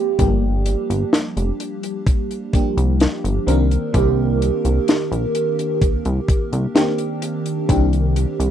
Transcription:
Already playing: fm electric piano F3 G#3 A#3 C4 G4
0.19 analog synth bass G1, fm electric piano F3 G3 A#3 D4 G4, kick, closed hi-hat
0.66 closed hi-hat
0.90 analog synth bass G1, closed hi-hat
1.13 snare, closed hi-hat
1.37 analog synth bass F1, closed hi-hat
1.60 closed hi-hat
1.83 closed hi-hat
2.07 kick, closed hi-hat
2.31 closed hi-hat
2.53 fm electric piano F3 G3 A#3 D4 G4, kick, closed hi-hat
2.77 analog synth bass C2, closed hi-hat
3.00 snare, closed hi-hat
3.24 analog synth bass G1, closed hi-hat
3.47 analog synth bass C2, fm electric piano D#3 A#3 C4 D4 A#4, closed hi-hat
3.71 closed hi-hat
3.93 analog synth bass C2, fm electric piano D#3 A#3 C4 D4 G4, kick, closed hi-hat
4.42 closed hi-hat
4.65 analog synth bass C2, closed hi-hat
4.88 snare, closed hi-hat
5.11 analog synth bass A#1, closed hi-hat
5.35 closed hi-hat
5.59 closed hi-hat
5.82 analog synth bass C2, kick, closed hi-hat
6.05 analog synth bass C2, closed hi-hat
6.28 kick, closed hi-hat
6.52 analog synth bass C2, closed hi-hat
6.75 fm electric piano D#3 A#3 C4 D4 G4, snare, closed hi-hat
6.98 closed hi-hat
7.22 closed hi-hat
7.46 closed hi-hat
7.68 analog synth bass C2, fm electric piano D#3 A#3 C4 D4 G4, kick, closed hi-hat
7.93 closed hi-hat
8.16 closed hi-hat
8.39 analog synth bass C2, closed hi-hat

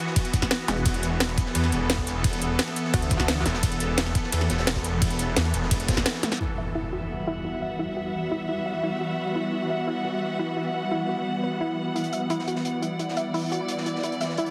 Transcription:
Already playing: synth drone E3 B3 F#4
0.07 snare
0.16 kick, closed hi-hat, ride
0.25 closed hi-hat
0.34 kick, closed hi-hat
0.42 kick, snare
0.51 snare, closed hi-hat, ride
0.68 wobble bass E1, snare, closed hi-hat
0.77 closed hi-hat
0.85 detuned saw bass E1, synth drone A4, kick, closed hi-hat, ride
0.94 closed hi-hat
1.03 closed hi-hat
1.20 snare, closed hi-hat, ride
1.29 snare
1.38 kick, closed hi-hat
1.46 snare
1.55 detuned saw bass E2, closed hi-hat, ride
1.64 snare
1.72 detuned saw bass E1, closed hi-hat
1.90 snare, closed hi-hat, ride
1.98 kick, snare
2.07 detuned saw bass E1, closed hi-hat
2.24 kick, closed hi-hat, open hi-hat, ride
2.33 closed hi-hat
2.42 closed hi-hat
2.59 snare, closed hi-hat, ride
2.68 snare
2.76 closed hi-hat
2.85 snare
2.94 wobble bass D2, kick, closed hi-hat, ride
3.02 closed hi-hat
3.10 kick, snare, closed hi-hat
3.20 kick, snare
3.28 snare, closed hi-hat, ride
3.37 snare
3.46 detuned saw bass E1, snare, closed hi-hat
3.54 snare, closed hi-hat
3.63 detuned saw bass E1, kick, closed hi-hat, ride
3.72 closed hi-hat
3.80 closed hi-hat
3.97 snare, closed hi-hat, ride
4.06 snare
4.15 kick, closed hi-hat
4.23 snare
4.32 detuned saw bass E2, closed hi-hat, ride
4.41 snare
4.50 detuned saw bass E1, snare, closed hi-hat
4.58 snare, closed hi-hat
4.67 snare, closed hi-hat, ride
4.75 kick, snare, closed hi-hat
4.84 detuned saw bass E1, closed hi-hat
5.02 kick, closed hi-hat, open hi-hat, ride
5.11 closed hi-hat
5.19 closed hi-hat
5.36 detuned saw bass E2, snare, closed hi-hat, ride
5.45 snare
5.54 detuned saw bass E1, closed hi-hat
5.63 snare
5.71 kick, closed hi-hat, ride
5.80 closed hi-hat
5.88 kick, snare, closed hi-hat
5.93 snare, closed hi-hat
5.97 kick, snare, closed hi-hat
6.06 snare, closed hi-hat, ride
6.14 closed hi-hat
6.23 snare, closed hi-hat, high tom
6.31 snare, closed hi-hat
6.40 synth drone E3 B3 F#4, string section B3, synth pluck E4, impact
6.58 synth pluck E5
6.75 string section G3, synth pluck E4
6.85 string section E5
6.93 synth pluck F#4
7.09 string section F#5
7.27 synth pluck E4
7.45 synth pluck E4
7.62 synth pluck E5
7.79 synth pluck E4
7.97 synth pluck F#4
8.31 synth pluck E4
8.49 synth pluck E4
8.66 synth pluck E5
8.83 synth pluck E4
9.01 synth pluck F#4
9.35 synth pluck E4
9.53 synth pluck E4
9.70 synth pluck E5
9.87 synth pluck E4
10.05 synth pluck F#4
10.39 synth pluck E4
10.57 synth pluck E4
10.74 synth pluck E5
10.91 synth pluck E4
11.09 synth pluck F#4
11.43 synth pluck B4
11.61 synth pluck E4
11.95 synth drone E4, synth pluck E4, closed hi-hat
12.04 closed hi-hat
12.13 synth pluck E5, closed hi-hat
12.30 synth pluck E4, closed hi-hat
12.39 snare
12.47 synth pluck F#4, closed hi-hat
12.56 snare
12.65 closed hi-hat
12.73 string section D5
12.82 synth pluck E4, closed hi-hat
12.99 synth pluck E4, closed hi-hat
13.09 snare
13.17 synth pluck E5, closed hi-hat
13.34 synth pluck E4, open hi-hat
13.52 synth pluck F#4, closed hi-hat
13.68 closed hi-hat
13.78 snare
13.86 synth pluck E4, closed hi-hat
13.96 snare
14.03 synth pluck E4, closed hi-hat
14.12 closed hi-hat
14.21 synth pluck E5, snare, closed hi-hat
14.30 snare
14.37 synth pluck E4, closed hi-hat
14.46 closed hi-hat

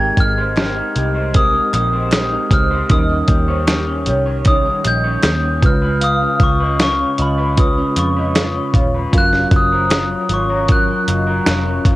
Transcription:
Already playing: tine electric piano G#3 C4 G4 A#4, clean electric guitar G#3 A#4, vibraphone G5, glockenspiel G#6
0.00 clean electric guitar D#4
0.17 picked electric bass G#1, clean electric guitar G4, glockenspiel F6, kick, closed hi-hat
0.37 clean electric guitar C5, vibraphone D#5
0.56 clean electric guitar G4, snare, clap, closed hi-hat
0.76 clean electric guitar D#4
0.95 picked electric bass C2, clean electric guitar G4, vibraphone D#5, closed hi-hat
1.15 clean electric guitar C5
1.34 tine electric piano G#3 C4 G4 A#4, clean electric guitar G#3, vibraphone C5, glockenspiel D#6, kick, closed hi-hat
1.53 clean electric guitar D#4
1.73 picked electric bass A#1, clean electric guitar G4, glockenspiel D#6, clap, closed hi-hat
1.93 clean electric guitar C5, vibraphone D#5
2.12 clean electric guitar G4, snare, clap, closed hi-hat
2.32 clean electric guitar D#4
2.51 picked electric bass C#2, clean electric guitar G4, vibraphone C5, glockenspiel F6, kick, closed hi-hat
2.70 clean electric guitar C5
2.89 picked electric bass D#2, clean electric guitar D#3, tine electric piano F3 C#4 D#4 A#4, vibraphone D#5, glockenspiel D#6, kick, closed hi-hat
2.96 tine electric piano G3
3.09 clean electric guitar C#4
3.28 picked electric bass D#2, clean electric guitar G4, kick, closed hi-hat
3.48 vibraphone C5, clean electric guitar C#5
3.67 clean electric guitar G4, snare, clap, closed hi-hat
3.87 clean electric guitar C#4
4.06 picked electric bass C2, clean electric guitar G4, vibraphone C#5, closed hi-hat
4.26 clean electric guitar C#5
4.45 clean electric guitar D#3, tine electric piano G3 C#4 D#4 C#5, glockenspiel D#6, kick, closed hi-hat
4.65 clean electric guitar C#4
4.84 picked electric bass A#1, clean electric guitar G4, vibraphone D#5, glockenspiel G6, clap, closed hi-hat
5.04 clean electric guitar C#5
5.23 picked electric bass D#2, clean electric guitar G4, snare, clap, closed hi-hat
5.44 clean electric guitar C#4
5.61 picked electric bass C#2, clean electric guitar C#3, tine electric piano G#3 C#4 F4 B4, kick, closed hi-hat
5.66 glockenspiel F6
5.82 clean electric guitar B4
6.01 clean electric guitar C#3, vibraphone F5, glockenspiel D#6, closed hi-hat
6.22 clean electric guitar C#4
6.40 picked electric bass C#2, clean electric guitar F4, glockenspiel C#6, kick, closed hi-hat
6.60 clean electric guitar B4, vibraphone D#5
6.79 clean electric guitar F4, glockenspiel C#6, snare, clap, closed hi-hat
6.99 clean electric guitar C#4
7.18 picked electric bass C#2, clean electric guitar F4, vibraphone D#5, closed hi-hat
7.22 glockenspiel B5
7.38 clean electric guitar B4
7.56 clean electric guitar C#3, tine electric piano G#3 C#4 F4 B4, vibraphone C#5, kick, closed hi-hat
7.60 glockenspiel D#6
7.77 clean electric guitar C#4
7.96 picked electric bass F2, clean electric guitar F4, glockenspiel C#6, clap, closed hi-hat
8.16 clean electric guitar B4, vibraphone D#5
8.36 clean electric guitar F4, snare, clap, closed hi-hat
8.55 clean electric guitar C#4
8.74 picked electric bass D#1, clean electric guitar F4, vibraphone C#5, kick, closed hi-hat
8.94 clean electric guitar B4
9.12 picked electric bass F#1, tine electric piano F#3 C#4 F4 A#4, clean electric guitar F#3, vibraphone F5, kick, closed hi-hat
9.18 glockenspiel F#6
9.33 clean electric guitar C#4, snare
9.51 picked electric bass F#1, clean electric guitar F4, kick, closed hi-hat
9.56 glockenspiel D#6
9.72 clean electric guitar A#4, vibraphone C5
9.91 clean electric guitar F4, snare, clap, closed hi-hat
10.11 clean electric guitar C#4
10.29 picked electric bass G#1, clean electric guitar F4, vibraphone C#5, closed hi-hat
10.34 glockenspiel C#6
10.50 clean electric guitar A#4
10.68 tine electric piano F#3 C#4 F4 A#4, clean electric guitar F#3, kick, closed hi-hat
10.72 glockenspiel F#6
10.89 clean electric guitar C#4
11.08 picked electric bass F#1, clean electric guitar F4, clap, closed hi-hat
11.27 clean electric guitar A#4
11.46 picked electric bass F1, clean electric guitar F4, snare, clap, closed hi-hat
11.66 clean electric guitar C#4
11.85 picked electric bass F#1, clean electric guitar F4, kick, closed hi-hat

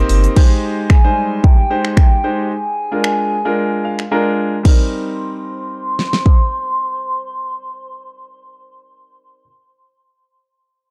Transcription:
Already playing: grand piano A#3 C4 D#4 G4 C5
0.09 analog synth bass G1, open hi-hat, shaker
0.24 closed hi-hat, shaker
0.36 grand piano G#3 D#4 G4 C5, kick, crash
0.90 soft synth lead G#5, finger snap, kick
1.04 grand piano G3 G#3 D#4 C5
1.43 soft synth lead G5, kick
1.70 grand piano G#3 D#4 G4 C5
1.85 finger snap
1.97 soft synth lead G5, finger snap, kick
2.24 grand piano G#3 D#4 G4 C5
2.51 soft synth lead G#5
2.91 grand piano G#3 D4 F4 A#4
3.04 finger snap
3.45 grand piano G#3 D4 F4 A#4
3.85 grand piano F5
3.99 finger snap
4.11 grand piano G#3 D4 F4 A#4 A#5
4.63 grand piano G3 C4 D#4, soft synth lead C6, kick, crash
4.67 grand piano A#4
5.99 snare
6.13 snare
6.26 kick

